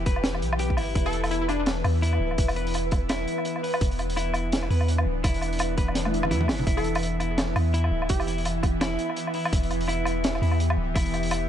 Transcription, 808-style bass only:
Already playing: E1
0.42 B1
0.78 G1
0.95 E1
1.85 E2
2.20 D1
2.38 E1
3.81 E1
4.71 E2
5.06 D1
5.24 E1
6.31 E2
6.49 G1
6.67 E1
7.56 E2
7.92 D1
8.10 E1
9.53 E1
10.42 E2
10.78 D1
10.96 E1

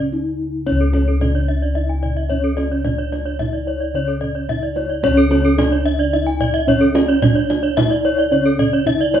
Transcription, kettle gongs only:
Already playing: C#3
0.12 D4
0.67 C#4
0.72 C#2
1.21 D4
2.30 D4
2.84 D4
3.39 D4
3.94 C#3
4.49 D4
5.03 C#4
5.08 C#2
7.22 D4
8.33 C#3
8.87 D4

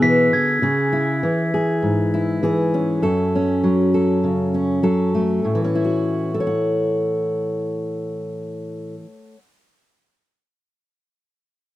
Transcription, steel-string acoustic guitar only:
Already playing: B2 B3 E4 G#4
0.02 E3
0.33 D3
0.62 C#3 G#4
0.93 E4
1.23 E3
1.54 G#4
1.82 G#2
2.14 E4
2.43 E3 G#4
2.74 C#4
3.02 F#2 A4
3.35 C#4
3.63 F#3
3.94 A4
4.24 C#3
4.54 C#4
4.83 F#3 A4
5.15 A3
5.45 A2
5.55 E3
5.64 C#4
5.75 E4
5.85 F#4
6.34 A4
6.40 C#5
6.47 F#5

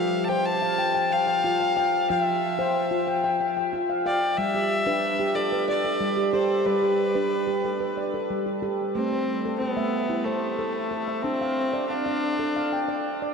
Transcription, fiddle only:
Already playing: F5
0.24 A5
0.29 G5
0.46 A5
1.12 F5
2.10 E5
4.06 D5
4.37 E5
5.35 D5
5.69 D5
6.32 C5
6.66 B4
8.95 C4
9.58 B3
10.24 A3
11.22 C4
11.88 D4

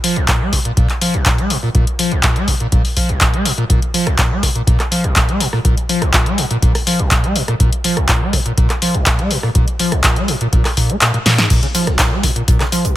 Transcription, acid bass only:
0.04 F3
0.16 A#1
0.28 A#2
0.41 G#3
0.53 A#2
0.65 A#2
0.77 A#2
1.01 F3
1.14 A#1
1.26 A#2
1.39 G#3
1.51 A#2
1.63 A#2
1.75 A#2
1.99 F3
2.12 A#1
2.24 A#2
2.36 G#3
2.48 A#2
2.61 A#2
2.72 A#2
2.97 F3
3.09 A#1
3.21 A#2
3.33 G#3
3.45 A#2
3.58 A#2
3.70 A#2
3.94 F3
4.06 A#1
4.18 A#2
4.31 G#3
4.43 A#2
4.55 A#2
4.67 A#2
4.91 F3
5.04 A#1
5.16 A#2
5.29 G#3
5.40 A#2
5.53 A#2
5.65 A#2
5.89 F3
6.02 A#1
6.14 A#2
6.26 G#3
6.38 A#2
6.51 A#2
6.62 A#2
6.87 F3
6.99 A#1
7.11 A#2
7.24 G#3
7.36 A#2
7.48 A#2
7.60 A#2
7.85 F3
7.97 A#1
8.09 A#2
8.21 G#3
8.33 A#2
8.46 A#2
8.58 A#2
8.82 F3
8.94 A#1
9.19 G#3
9.31 A#2
9.43 A#2
9.55 A#2
9.80 F3
9.92 A#1
10.04 A#2
10.17 G#3
10.29 A#2
10.41 A#2
10.53 A#2
10.77 A#2
10.90 A#3
11.02 A#2
11.14 A#2
11.26 A#2
11.38 G#2
11.50 A#2
11.63 C#3
11.75 F3
11.87 A#1
11.99 A#2
12.12 G#3
12.23 A#2
12.36 A#2
12.48 A#2
12.60 C#3
12.72 F3
12.85 A#1

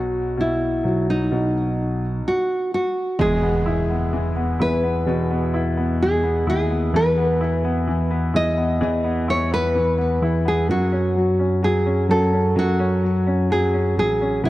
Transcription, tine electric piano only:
Already playing: B1
0.85 B1
1.31 B1
3.19 E2
4.60 E2
5.06 E2
6.47 D#2
6.94 E2
8.34 E2
8.81 E2
10.22 E2
10.69 F#2
12.09 F#2
12.56 F#2
13.97 A1
14.43 B1

